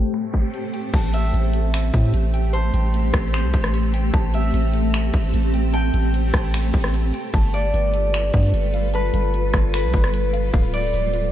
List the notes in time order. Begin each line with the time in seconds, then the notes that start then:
Already playing: A2 A3 C4 G4 A4 C5 G5 A5
0.14 finger snap, closed hi-hat
0.33 kick, closed hi-hat
0.54 closed hi-hat
0.73 G5, closed hi-hat
0.94 A1 A3 C4 G4 C5 A5, kick, closed hi-hat, crash
1.13 E5 G5, closed hi-hat
1.34 A1 C5, closed hi-hat
1.53 A4, closed hi-hat
1.74 finger snap, closed hi-hat
1.94 A2, kick, closed hi-hat
2.14 A1, closed hi-hat
2.34 G5, closed hi-hat
2.53 C5 A5, closed hi-hat
2.73 A1 G5, closed hi-hat
2.94 C5, closed hi-hat
3.13 A1 A4, kick, cross-stick, closed hi-hat
3.33 C5, finger snap, closed hi-hat
3.44 C2
3.54 A1, kick, closed hi-hat
3.64 cross-stick
3.74 closed hi-hat
3.93 G5, closed hi-hat
4.13 A1 A5, kick, closed hi-hat
4.33 E5 G5, closed hi-hat
4.53 A1 C5, closed hi-hat
4.74 A4, closed hi-hat
4.94 finger snap, closed hi-hat
5.14 A1, kick, closed hi-hat
5.34 A1, closed hi-hat
5.54 G5, closed hi-hat
5.73 G5 A5, closed hi-hat
5.93 A1 G5, closed hi-hat
6.14 C5, closed hi-hat
6.34 A1 A4, kick, cross-stick, closed hi-hat
6.54 finger snap, closed hi-hat
6.74 A1, kick, closed hi-hat
6.84 cross-stick
6.94 closed hi-hat
7.13 G5, closed hi-hat
7.34 G1 G3 F4 A4 B4 A5, kick, closed hi-hat
7.53 D5 F5, closed hi-hat
7.74 G1 B4, closed hi-hat
7.94 A4, closed hi-hat
8.14 finger snap, closed hi-hat
8.34 G2, kick, closed hi-hat
8.54 G1, closed hi-hat
8.74 F5, closed hi-hat
8.94 B4 A5, closed hi-hat
9.14 G1 F5, closed hi-hat
9.33 B4, closed hi-hat
9.53 G1 A4, kick, cross-stick, closed hi-hat
9.74 B4, finger snap, closed hi-hat
9.84 B1
9.93 G1, kick, closed hi-hat
10.04 cross-stick
10.14 closed hi-hat
10.33 F5, closed hi-hat
10.53 D1 D3 A3 C4 D5 F5, kick, closed hi-hat
10.73 D5, closed hi-hat
10.93 D1 C5, closed hi-hat
11.13 F4, closed hi-hat